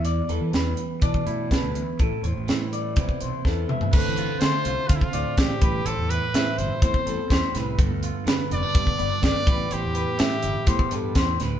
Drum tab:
CC |----------------|----------------|x---------------|----------------|
HH |x-x-x-x-x-x-x-x-|x-x-x-x-x-x-----|--x-x-x-x-x-x-x-|x-x-x-x-x-x-x-x-|
SD |----o-------o---|----o-------o---|----o-------o---|----o-------o-o-|
T2 |----------------|--------------o-|----------------|----------------|
FT |----------------|---------------o|----------------|----------------|
BD |--------oo--o---|o-------oo--o---|o-------oo--o-o-|--------oo--o---|

CC |----------------|----------------|
HH |x-x-x-x-x-x-x-x-|x-x-x-x-x-x-x-x-|
SD |----o-------o---|----o-------o-o-|
T2 |----------------|----------------|
FT |----------------|----------------|
BD |o-------oo--o-o-|--------oo--o---|